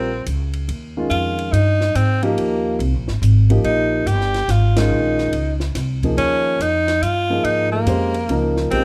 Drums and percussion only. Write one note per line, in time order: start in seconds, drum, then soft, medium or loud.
0.26 hi-hat pedal soft
0.26 ride medium
0.53 ride soft
0.69 ride medium
1.11 ride soft
1.38 ride soft
1.53 hi-hat pedal medium
1.53 ride medium
1.81 snare soft
1.95 hi-hat pedal medium
1.95 ride medium
2.22 ride soft
2.38 ride medium
2.80 ride medium
3.08 snare soft
3.23 hi-hat pedal medium
3.23 ride medium
3.50 ride soft
3.64 ride medium
4.07 hi-hat pedal medium
4.07 ride medium
4.21 snare soft
4.34 snare soft
4.34 ride soft
4.49 snare soft
4.49 hi-hat pedal medium
4.49 ride medium
4.76 snare medium
4.76 ride medium
5.18 snare soft
5.33 ride medium
5.60 snare soft
5.75 snare soft
5.75 hi-hat pedal medium
5.75 ride medium
6.03 kick medium
6.03 ride soft
6.18 ride medium
6.60 hi-hat pedal medium
6.60 ride medium
6.88 snare soft
6.88 ride soft
7.03 hi-hat pedal medium
7.03 ride medium
7.44 ride medium
7.87 hi-hat pedal medium
7.87 ride medium
8.14 ride soft
8.29 ride medium
8.57 snare soft
8.71 ride medium